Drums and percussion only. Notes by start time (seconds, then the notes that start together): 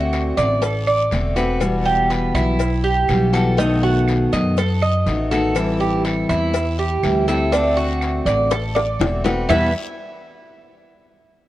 0.13 cowbell, short guiro, claves, maracas
0.38 cowbell, short guiro, maracas
0.62 cowbell, long guiro, maracas
0.87 claves, maracas
1.11 cowbell, short guiro, maracas
1.36 cowbell, short guiro, maracas
1.61 cowbell, long guiro, claves, maracas
1.87 maracas
2.11 cowbell, short guiro, maracas
2.35 short guiro, claves, maracas
2.60 cowbell, long guiro, maracas
2.85 maracas
3.09 cowbell, short guiro, claves, maracas
3.33 cowbell, short guiro, maracas
3.58 cowbell, long guiro, maracas
3.84 maracas
4.08 cowbell, short guiro, claves, maracas
4.33 cowbell, short guiro, maracas
4.57 cowbell, long guiro, maracas
4.82 claves, maracas
5.07 cowbell, short guiro, maracas
5.32 cowbell, short guiro, maracas
5.56 cowbell, long guiro, claves, maracas
5.81 maracas
6.05 cowbell, short guiro, maracas
6.29 short guiro, claves, maracas
6.54 cowbell, long guiro, maracas
6.79 maracas
7.04 cowbell, short guiro, claves, maracas
7.28 cowbell, short guiro, maracas
7.53 cowbell, long guiro, maracas
7.78 maracas
8.01 cowbell, short guiro, claves, maracas
8.26 cowbell, short guiro, maracas
8.51 cowbell, high bongo, long guiro, maracas
8.75 high bongo, claves, maracas
9.00 cowbell, low bongo, short guiro, maracas
9.25 cowbell, low bongo, short guiro, maracas
9.49 low bongo, long guiro, claves, maracas